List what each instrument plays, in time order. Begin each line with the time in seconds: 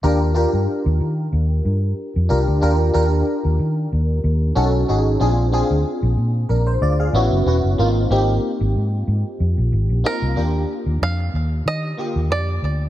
0.03 fingered electric bass D#2, fm electric piano D4 F4 G4 A#4
0.34 fm electric piano D4 F4 G4 A#4
0.53 fingered electric bass G2
0.86 fingered electric bass D#2
1.00 fingered electric bass D#3
1.32 fingered electric bass D#2
1.65 fingered electric bass G2
2.16 fingered electric bass F2
2.29 fingered electric bass C2, fm electric piano D4 F4 G4 A#4
2.47 fingered electric bass D2
2.61 fingered electric bass D#2, fm electric piano D4 F4 G4 A#4
2.94 fingered electric bass D#2, fm electric piano D4 F4 G4 A#4
3.45 fingered electric bass D#2
3.59 fingered electric bass D#3
3.92 fingered electric bass D#2
4.24 fingered electric bass D#2
4.55 fingered electric bass B1, fm electric piano C#4 D#4 F#4 A4
4.88 fingered electric bass G#1, fm electric piano C#4 D#4 F#4 G#4
5.20 fingered electric bass A#1, fm electric piano C4 D4 F4 G#4
5.52 fm electric piano C4 D4 F4 G#4
5.70 fingered electric bass D2
6.02 fingered electric bass A#1
6.17 fingered electric bass A#2
6.49 fingered electric bass A#1, fm electric piano D4 A#4
6.67 fm electric piano C5
6.81 fingered electric bass D2, fm electric piano F4 D5
7.00 fm electric piano G#4 F5
7.13 fingered electric bass A1, fm electric piano B3 C#4 E4 F#4
7.31 fingered electric bass F#1
7.46 fingered electric bass E1, fm electric piano B3 C#4 E4 F#4
7.64 fingered electric bass F#1
7.78 fingered electric bass G#1, fm electric piano A#3 C4 D#4 F4
8.10 fingered electric bass G#1, fm electric piano A#3 C4 D#4 G4
8.60 fingered electric bass G#1
8.76 fingered electric bass G#2
9.07 fingered electric bass G#2
9.40 fingered electric bass F2
9.58 fingered electric bass A#1
9.72 fingered electric bass G#1
9.89 fingered electric bass A#1
10.04 fm electric piano A#3 C4 D#4 F4, five-string banjo A#4
10.22 fingered electric bass C2
10.36 fingered electric bass D#2, fm electric piano A#3 D4 F4 G4
10.86 fingered electric bass D#2
11.01 fingered electric bass F2, five-string banjo F5
11.34 fingered electric bass D#2
11.65 fingered electric bass D#3, five-string banjo D#5
11.97 fm electric piano D3 A#3 F4 G4
12.15 fingered electric bass D#2
12.30 fingered electric bass F2, five-string banjo D5
12.62 fingered electric bass D2